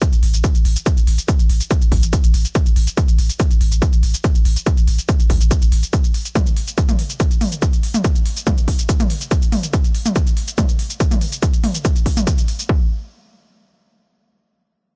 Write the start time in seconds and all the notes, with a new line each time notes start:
0.02 kick, closed hi-hat, shaker
0.13 A1, closed hi-hat, shaker
0.23 A1, open hi-hat
0.34 A1, closed hi-hat, shaker
0.44 kick, closed hi-hat, shaker
0.55 A1, closed hi-hat, shaker
0.65 A1, open hi-hat
0.76 closed hi-hat, shaker
0.86 kick, closed hi-hat, shaker
0.97 A1, closed hi-hat, shaker
1.07 A1, open hi-hat
1.18 closed hi-hat, shaker
1.28 kick, closed hi-hat, shaker
1.39 A1, closed hi-hat, shaker
1.50 A1, open hi-hat
1.61 closed hi-hat, shaker
1.71 kick, closed hi-hat, shaker
1.82 A1, closed hi-hat, shaker
1.92 A1, kick, open hi-hat
2.03 A1, closed hi-hat, shaker
2.13 kick, closed hi-hat, shaker
2.24 A1, closed hi-hat, shaker
2.34 A1, open hi-hat
2.45 closed hi-hat, shaker
2.55 kick, closed hi-hat, shaker
2.66 A1, closed hi-hat, shaker
2.76 A1, open hi-hat
2.87 closed hi-hat, shaker
2.97 kick, closed hi-hat, shaker
3.08 A1, closed hi-hat, shaker
3.19 A1, open hi-hat
3.30 closed hi-hat, shaker
3.40 kick, closed hi-hat, shaker
3.51 A1, closed hi-hat, shaker
3.61 A1, open hi-hat
3.72 A1, closed hi-hat, shaker
3.82 kick, closed hi-hat, shaker
3.93 A1, closed hi-hat, shaker
4.03 A1, open hi-hat
4.14 closed hi-hat, shaker
4.24 kick, closed hi-hat, shaker
4.35 A1, closed hi-hat, shaker
4.45 A1, open hi-hat
4.56 closed hi-hat, shaker
4.66 kick, closed hi-hat, shaker
4.77 A1, closed hi-hat, shaker
4.88 A1, open hi-hat
4.99 closed hi-hat, shaker
5.09 kick, closed hi-hat, shaker
5.20 A1, closed hi-hat, shaker
5.30 A1, kick, open hi-hat
5.41 A1, closed hi-hat, shaker
5.51 kick, closed hi-hat, shaker
5.62 A1, closed hi-hat, shaker
5.72 A1, open hi-hat
5.83 closed hi-hat, shaker
5.93 kick, closed hi-hat, shaker
6.04 closed hi-hat, shaker
6.14 open hi-hat
6.25 closed hi-hat, shaker
6.35 kick, closed hi-hat, mid tom, shaker
6.47 closed hi-hat, shaker
6.57 open hi-hat
6.68 closed hi-hat, shaker
6.78 kick, closed hi-hat, shaker
6.89 closed hi-hat, mid tom, shaker
6.99 open hi-hat
7.10 closed hi-hat, shaker
7.20 kick, closed hi-hat, shaker
7.31 closed hi-hat, shaker
7.41 mid tom, open hi-hat
7.52 closed hi-hat, shaker
7.62 kick, closed hi-hat, shaker
7.73 closed hi-hat, shaker
7.83 open hi-hat
7.94 closed hi-hat, mid tom, shaker
8.04 kick, closed hi-hat, shaker
8.15 closed hi-hat, shaker
8.26 open hi-hat
8.37 closed hi-hat, shaker
8.47 kick, closed hi-hat, mid tom, shaker
8.58 closed hi-hat, shaker
8.68 kick, open hi-hat
8.79 closed hi-hat, shaker
8.89 kick, closed hi-hat, shaker
9.00 closed hi-hat, mid tom, shaker
9.10 open hi-hat
9.21 closed hi-hat, shaker
9.31 kick, closed hi-hat, shaker
9.42 closed hi-hat, shaker
9.52 mid tom, open hi-hat
9.63 closed hi-hat, shaker
9.73 kick, closed hi-hat, shaker
9.84 closed hi-hat, shaker
9.95 open hi-hat
10.06 closed hi-hat, mid tom, shaker
10.16 kick, closed hi-hat, shaker
10.27 closed hi-hat, shaker
10.37 open hi-hat
10.48 closed hi-hat, shaker
10.58 kick, closed hi-hat, mid tom, shaker
10.69 closed hi-hat, shaker
10.79 open hi-hat
10.90 closed hi-hat, shaker
11.00 kick, closed hi-hat, shaker
11.11 closed hi-hat, mid tom, shaker
11.21 open hi-hat
11.32 closed hi-hat, shaker
11.42 kick, closed hi-hat, shaker
11.54 closed hi-hat, shaker
11.64 mid tom, open hi-hat
11.75 closed hi-hat, shaker
11.85 kick, closed hi-hat, shaker
11.96 closed hi-hat, shaker
12.06 kick, open hi-hat
12.17 closed hi-hat, mid tom, shaker
12.27 kick, closed hi-hat, shaker
12.38 closed hi-hat, shaker
12.48 open hi-hat
12.59 closed hi-hat, shaker
12.69 kick